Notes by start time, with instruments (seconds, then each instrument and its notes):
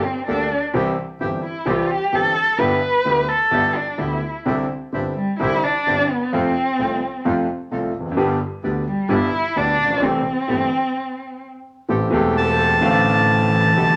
0.04 cello C4
0.27 double bass D2, grand piano D2 D3 G3 A#3 D4 A4, bandoneon A#3 G4 A4, cello D4
0.74 grand piano C2 C3 E3 G3 C4 G4, double bass C2, bandoneon C4 E4 G4
1.20 double bass G1, grand piano G1 G2 E3 G3 C4 G4, bandoneon C4 E4 G4
1.43 cello E4
1.66 grand piano C2 C3 E3 G3 C4 G4, double bass C2, bandoneon C4 E4 G4, cello F4
1.91 cello G4
2.12 grand piano G1 G2 E3 G3 C4 G4, double bass G1, bandoneon C4 E4 G4, cello A4
2.58 grand piano G1 G2 D3 G3 B3 E4, double bass G1, bandoneon B3 E4 G4, cello B4
3.05 grand piano D2 D3 G3 B3 E4, double bass D2, bandoneon B3 E4 G4
3.29 cello A4
3.51 grand piano G1 G2 D3 G3 B3 E4, double bass G1, bandoneon B3 E4 G4
3.76 cello D4
3.98 grand piano D2 D3 G3 B3 E4, double bass D2, bandoneon B3 E4 G4, cello E4
4.45 grand piano C2 C3 D3 G3 C4 E4, double bass C2, bandoneon C4 D4 E4
4.93 grand piano G1 G2 D3 G3 C4 E4, double bass G1, bandoneon C4 D4 E4
5.16 cello G3
5.39 grand piano C2 C3 D3 G3 C4 E4, double bass C2, bandoneon C4 D4 E4, cello E4
5.64 cello D4
5.87 double bass G1, grand piano G1 G2 D3 G3 C4 E4, bandoneon C4 D4 E4
6.10 cello B3
6.32 grand piano F2 C3 F3 A3 F4, double bass F2, bandoneon A3 C4 F4, cello C4
6.79 double bass C2, grand piano C2 C3 F3 A3 F4, bandoneon A3 C4 F4
7.25 grand piano F2 C3 F3 A3 F4, double bass F2, bandoneon A3 C4 F4
7.71 grand piano C2 C3 F3 A3 F4, double bass C2, bandoneon A3 C4 F4
7.95 double bass F1
8.00 grand piano E2
8.06 grand piano F2
8.12 grand piano F#2
8.17 grand piano G1 G2 D3 G3 B3 G4, double bass G1, bandoneon G3 B3 D4
8.63 double bass D2, grand piano D2 D3 G3 B3 G4, bandoneon G3 B3 D4
8.87 cello G3
9.09 grand piano G1 G2 D3 G3 B3 G4, double bass G1, bandoneon G3 B3 D4, cello E4
9.55 double bass D2, grand piano D2 D3 G3 B3 G4, bandoneon G3 B3 D4, cello D4
9.79 double bass A#1
9.84 grand piano A1
9.90 grand piano A#1
9.96 grand piano B1
10.01 double bass C2, grand piano C2 C3 E3 A3 C4 G4, bandoneon A3 C4 E4, cello C4
10.48 grand piano G1 G2 E3 A3 C4 G4, double bass G1, bandoneon A3 C4 E4
11.89 grand piano A1 A2 E3 A3 C4 G4, double bass A1, bandoneon A3 C4 G4
12.10 grand piano E1 E2 E3 A3 C4 G4, double bass E1, bandoneon A3 C4 G4
12.37 cello E3, bandoneon A5
12.80 grand piano A1 A2 D3 A3 C4 F5, double bass A1, bandoneon C4 D4 F5
13.76 double bass B1, grand piano B1 B2 D3 A3 B3 G4, bandoneon A3 B3 G4